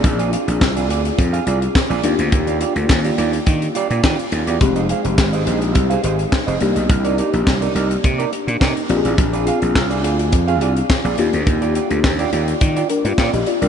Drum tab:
HH |xxxx-xxxxxxx-xxx|xxxx-xxxxxxx-xxx|xxxx-xxxxxxx-xxx|xxxx-xxxxxxx-xxx|
CP |----x-------x---|----x-------x---|----x-------x---|----x-------x---|
SD |----o-------o---|----o-------o---|----o-------o---|----o-------o---|
BD |o---o---o---o---|o---o---o---o---|o---o---o---o---|o---o---o---o---|

HH |xxxx-xxxxxxx-xxx|xxxx-xxxxxxx-xxx|
CP |----x-------x---|----x-------x---|
SD |----o-------o---|----o-------o---|
BD |o---o---o---o---|o---o---o---o---|